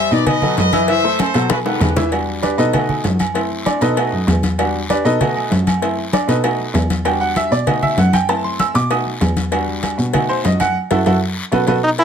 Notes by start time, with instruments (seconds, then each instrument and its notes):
0.11 cello B2, grand piano D#3 D#4 D#5, trumpet section B4 D5, high conga, short guiro
0.26 trumpet section B4 D#5, cowbell, high conga, low conga, low agogo, long guiro
0.42 grand piano F#3 F#4 A4, high conga, low conga, low agogo
0.57 cello F#2, trumpet section B4 D#5, cowbell, high conga, low timbale, short guiro
0.73 grand piano E3 E4 E5, cowbell, high conga, low agogo, short guiro
0.88 grand piano E3 E4 E5, trumpet section C5 E5, cowbell, high conga, low agogo, long guiro
1.04 grand piano A3 A4 C5, high conga
1.19 trumpet section A4 C5, cowbell, high conga, high timbale, low agogo, short guiro
1.34 cello B2, grand piano F#3 F#4 A4, cowbell, high conga, short guiro
1.50 trumpet section F#4 B4, cowbell, high bongo, high conga, low agogo, long guiro
1.65 grand piano D#3 A4 F#5, trumpet section G4 B4, high bongo, low timbale
1.81 cello E2, cowbell, low bongo, low conga, low agogo, short guiro
1.96 grand piano E3 E4 E5, cowbell, low bongo, low conga, low timbale, short guiro
2.12 grand piano G3 D4 F#4, cowbell, high conga, low agogo, long guiro
2.28 high conga
2.43 grand piano D4 G4 B4 D5, cowbell, high conga, low timbale, low agogo, short guiro
2.58 cello B2, grand piano D#4 A4 B4 D#5, high conga, short guiro
2.73 grand piano A3 D#4 F#4, cowbell, high conga, low conga, low agogo, long guiro
2.89 high conga, low conga, low agogo
3.04 cello F#2, cowbell, high conga, low timbale, short guiro
3.19 cowbell, high conga, low agogo, short guiro
3.34 grand piano A3 C4 E4, cowbell, high conga, low agogo, long guiro
3.51 high conga
3.66 grand piano D4 D5, cowbell, high conga, low timbale, low agogo, short guiro
3.81 cello B2, grand piano D#4 A4 B4 D#5, cowbell, high conga, short guiro
3.97 grand piano A3 D#4 F#4, cowbell, high conga, low agogo, long guiro
4.12 cello F#2, high conga
4.28 cello E2, cowbell, high conga, low timbale, low agogo, short guiro
4.43 cowbell, high conga, short guiro
4.58 grand piano G3 D4 F#4, cowbell, high conga, low agogo, long guiro
4.74 high conga
4.90 grand piano D4 G4 B4 D5, cowbell, high conga, low timbale, low agogo, short guiro
5.05 cello B2, grand piano D#4 A4 B4 D#5, high conga, short guiro
5.20 grand piano A3 D#4 F#4, cowbell, high conga, low conga, low agogo, long guiro
5.37 high conga, low agogo
5.51 cello F#2, cowbell, high conga, low timbale, short guiro
5.67 cowbell, high conga, low agogo, short guiro
5.82 grand piano A3 C4 E4, cowbell, high conga, low agogo, long guiro
5.98 high conga
6.13 grand piano D4 D5, cowbell, high conga, low timbale, low agogo, short guiro
6.28 cello B2, grand piano D#4 A4 B4 D#5, cowbell, high conga, short guiro
6.43 grand piano A3 D#4 F#4, cowbell, high conga, low agogo, long guiro
6.59 high conga
6.74 cello E2, cowbell, high conga, low timbale, low agogo, short guiro
6.90 cowbell, high conga, short guiro
7.05 grand piano G3 D4 F#4 G5, cowbell, high conga, low agogo, long guiro
7.21 grand piano F#5, high conga
7.36 grand piano E5, cowbell, high conga, low timbale, low agogo, short guiro
7.51 cello B2, grand piano D5, high conga, short guiro
7.66 grand piano A3 D#4 F#4 D#5, cowbell, high conga, low conga, low agogo, long guiro
7.82 grand piano E5, high conga, low conga, low agogo
7.97 cello F#2, grand piano F#5, cowbell, high conga, low timbale, short guiro
8.13 grand piano G5, cowbell, high conga, low agogo, short guiro
8.29 grand piano A3 C4 E4 A5, cowbell, high conga, low agogo, long guiro
8.44 grand piano C6, high conga
8.59 grand piano E6, cowbell, high conga, low timbale, low agogo, short guiro
8.75 cello B2, grand piano D6, cowbell, high conga, short guiro
8.90 grand piano A3 D#4 F#4 D#6, cowbell, high conga, low agogo, long guiro
9.06 high conga
9.21 cello E2, cowbell, high conga, low timbale, low agogo, short guiro
9.36 cowbell, high conga, short guiro
9.51 grand piano G3 D4 F#4, cowbell, high conga, low agogo, long guiro
9.68 high conga
9.83 cowbell, high conga, low timbale, low agogo, short guiro
9.98 cello B2, high conga, short guiro
10.13 grand piano A3 D#4 F#4, cowbell, high conga, low conga, low agogo, long guiro
10.29 grand piano C5, high conga, low agogo
10.44 cello F#2, grand piano D#5, cowbell, high conga, low timbale, short guiro
10.60 grand piano F#5, cowbell, high conga, low agogo, short guiro
10.91 cello F#2, grand piano E4 F#4 A4, cowbell, high conga, high timbale, long guiro
11.06 cello F#2, grand piano E4 F#4 A4, cowbell, high conga, high timbale, long guiro
11.52 cello B2, grand piano F#4 A4 B4, cowbell, high conga, high timbale, long guiro
11.67 cello B2, grand piano F#4 A4 B4, cowbell, high conga, high timbale, long guiro
11.84 trombone D#4
11.98 trombone E4, cowbell, high conga, low agogo